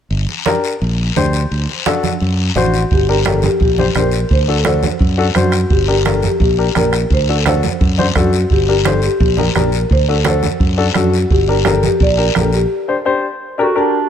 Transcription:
0.10 fingered electric bass G1, long guiro
0.29 high conga
0.46 upright piano D4 G4 A#4, high conga, short guiro
0.64 short guiro
0.81 fingered electric bass A#1, high conga, long guiro
1.16 fingered electric bass D2, upright piano D4 G4 C5, high conga, short guiro
1.33 short guiro
1.51 fingered electric bass D2, long guiro
1.69 high conga
1.86 upright piano D4 F#4 A4, high conga, short guiro
2.03 high conga, short guiro
2.20 fingered electric bass F#2, high conga, long guiro
2.55 fingered electric bass A1, upright piano D4 F#4 C5, marimba F#4, high conga, short guiro
2.74 short guiro
2.91 fingered electric bass G1, marimba G4, bombo low, long guiro
3.09 upright piano D4 G4 A#4, marimba G4, high conga
3.25 upright piano D4 G4 A#4, marimba A4, bombo rim, high conga, short guiro
3.42 high conga, short guiro
3.47 marimba G4
3.60 fingered electric bass A#1, marimba G4, bombo low, high conga, long guiro
3.78 upright piano D4 G4 C5, high conga
3.95 fingered electric bass A#1, upright piano D4 G4 C5, bombo rim, high conga, short guiro
3.99 marimba A#4
4.11 short guiro
4.29 fingered electric bass D2, marimba C5, bombo low, long guiro
4.48 upright piano D4 F#4 A4, marimba A4, high conga
4.65 upright piano D4 F#4 A4, marimba C5, bombo rim, high conga, short guiro
4.83 high conga, short guiro
4.99 fingered electric bass F#2, bombo low, high conga, long guiro
5.18 upright piano D4 F#4 A4
5.35 fingered electric bass F#2, upright piano D4 F#4 C5, marimba F#4, bombo rim, high conga, short guiro
5.52 bombo rim, short guiro
5.70 fingered electric bass G1, marimba G4, bombo low, long guiro
5.88 upright piano D4 G4 A#4, marimba G4, high conga
6.05 upright piano D4 G4 A#4, marimba A4, bombo rim, high conga, short guiro
6.22 high conga, short guiro
6.27 marimba G4
6.40 fingered electric bass A#1, marimba G4, bombo low, high conga, long guiro
6.58 upright piano D4 G4 A#4
6.75 fingered electric bass A#1, upright piano D4 G4 A#4, marimba A#4, bombo rim, high conga, short guiro
6.93 bombo rim, short guiro
7.10 fingered electric bass D2, marimba C5, bombo low, long guiro
7.28 upright piano D4 F#4 A4, marimba A4, high conga
7.46 upright piano D4 F#4 A4, marimba C5, bombo rim, high conga, short guiro
7.63 high conga, short guiro
7.81 fingered electric bass F#2, bombo low, high conga, long guiro
7.98 upright piano D4 F#4 C5, high conga
8.15 fingered electric bass F#2, upright piano D4 F#4 A4, marimba F#4, bombo low, bombo rim, high conga, short guiro
8.33 short guiro
8.50 fingered electric bass G1, marimba G4, bombo low, long guiro
8.68 upright piano D4 G4 A#4, marimba G4, high conga
8.84 upright piano D4 G4 C5, bombo rim, high conga, short guiro
9.02 marimba G4, short guiro
9.20 fingered electric bass A#1, marimba G4, bombo low, high conga, long guiro
9.37 upright piano D4 G4 A#4, high conga
9.55 fingered electric bass A#1, upright piano D4 G4 A#4, marimba A#4, bombo rim, high conga, short guiro
9.72 short guiro
9.90 fingered electric bass D2, marimba C5, bombo low, long guiro
10.08 upright piano D4 F#4 A4, marimba A4, high conga
10.25 upright piano D4 F#4 A4, marimba C5, bombo rim, high conga, short guiro
10.42 high conga, short guiro
10.60 fingered electric bass F#2, bombo low, high conga, long guiro
10.77 upright piano D4 F#4 A4
10.94 fingered electric bass F#2, upright piano D4 F#4 A4, marimba F#4, bombo rim, high conga, short guiro
11.14 short guiro
11.30 fingered electric bass G1, marimba G4, bombo low, long guiro
11.48 upright piano D4 G4 A#4, marimba G4, high conga
11.65 upright piano D4 G4 A#4, marimba A4, bombo rim, high conga, short guiro
11.83 marimba G4, high conga, short guiro
12.00 fingered electric bass A#1, marimba D5, bombo low, high conga, long guiro
12.17 upright piano D4 G4 A#4, marimba A#4
12.35 fingered electric bass A#1, upright piano D4 G4 A#4, marimba A4, bombo rim, high conga, short guiro
12.53 marimba G4, short guiro
12.88 upright piano D4 G4 C5
13.05 upright piano D4 G4 C5
13.58 upright piano D4 G4 A#4, marimba F#4 A4, clarinet F#4
13.75 upright piano D4 G4 A#4, marimba D4 G4, clarinet D4

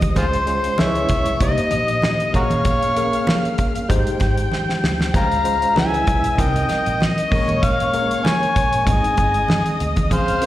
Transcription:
Already playing: fingered electric bass D2, tine electric piano G#3 D#4 G4 C5, string section D#5 D#6
0.01 kick, closed hi-hat, high conga
0.15 fingered electric bass C#2, tine electric piano G#3 C#4 F4 C5, harmonica F4 G#4 C5, string section C5 C6, kick, closed hi-hat, muted conga
0.33 closed hi-hat
0.47 tine electric piano G#3 C#4 F4 C5, closed hi-hat
0.64 closed hi-hat
0.78 fingered electric bass C#2, tine electric piano G#3 C#4 E4 A#4, string section C#5 C#6, harmonica E5, snare, high conga
0.86 tine electric piano B4
0.95 closed hi-hat
1.09 fingered electric bass B1, kick, closed hi-hat, low conga
1.26 closed hi-hat
1.40 fingered electric bass C2, tine electric piano A#3 D#4 G4 C5, string section D#5 D#6, harmonica D#5, kick, closed hi-hat, muted conga
1.58 muted fingered electric bass stroke, closed hi-hat
1.71 fingered electric bass A#1, closed hi-hat, muted conga
1.88 closed hi-hat
2.02 snare, high conga
2.20 closed hi-hat
2.33 fingered electric bass A#1, tine electric piano A#3 C#4 G#4 C#5, harmonica F#4 A#4 C#5, string section F5 F6, kick, closed hi-hat
2.50 closed hi-hat, high conga
2.65 kick, closed hi-hat, muted conga
2.83 closed hi-hat
2.96 tine electric piano A#3 C#4 G#4 A#4, closed hi-hat
3.13 closed hi-hat
3.27 snare, high conga
3.45 closed hi-hat
3.58 kick, closed hi-hat
3.75 closed hi-hat
3.89 fingered electric bass G#1, tine electric piano G#3 D#4 G4 C5, string section G5 G6, kick, closed hi-hat, muted conga, low conga
4.07 closed hi-hat
4.20 fingered electric bass G#1, kick, snare, closed hi-hat, muted conga
4.37 closed hi-hat
4.51 snare, high conga
4.69 snare
4.84 fingered electric bass D2, snare
5.00 snare, high conga
5.14 fingered electric bass C#2, tine electric piano G#3 C#4 F4 C5, string section F5 F6, harmonica F5 G5 A#5, kick, closed hi-hat, muted conga
5.32 closed hi-hat
5.44 tine electric piano G#3 C#4 F4 C5, closed hi-hat
5.62 closed hi-hat
5.75 fingered electric bass C#2, tine electric piano G#3 C#4 E4 B4, string section E5 E6, harmonica G#5, snare, high conga
5.94 closed hi-hat
6.07 fingered electric bass B1, kick, closed hi-hat, low conga
6.24 closed hi-hat
6.37 fingered electric bass C2, tine electric piano G3 C4 D#4 A#4, string section D#5 D#6, harmonica G5, kick, closed hi-hat, muted conga
6.56 closed hi-hat
6.69 muted fingered electric bass stroke, snare, closed hi-hat, muted conga
6.86 fingered electric bass A#1, closed hi-hat
7.00 harmonica D#5, snare, high conga
7.18 closed hi-hat
7.31 fingered electric bass A#1, tine electric piano G#3 A#3 C#4 A#4, string section C#5 C#6, kick, open hi-hat
7.48 closed hi-hat, high conga
7.63 harmonica F5, kick, closed hi-hat, muted conga
7.80 closed hi-hat
7.93 tine electric piano G#3 A#3 C#4 A#4, closed hi-hat
8.11 closed hi-hat
8.25 harmonica G#5, snare, high conga
8.43 closed hi-hat
8.56 fingered electric bass A#1, kick, closed hi-hat, muted conga
8.73 closed hi-hat
8.86 fingered electric bass G#1, tine electric piano G#3 C4 D#4 G#4, string section D#5 D#6, harmonica G#5, kick, closed hi-hat, muted conga, low conga
9.04 closed hi-hat
9.17 fingered electric bass G1, kick, closed hi-hat, muted conga
9.34 closed hi-hat
9.48 snare, high conga
9.66 closed hi-hat
9.80 fingered electric bass D2, closed hi-hat
9.96 kick, closed hi-hat, high conga
10.11 fingered electric bass C#2, tine electric piano F3 C4 C#4 G#4, harmonica C5, string section F5 F6, kick, closed hi-hat, muted conga
10.28 closed hi-hat
10.41 tine electric piano F3 C4 C#4 A#4, closed hi-hat

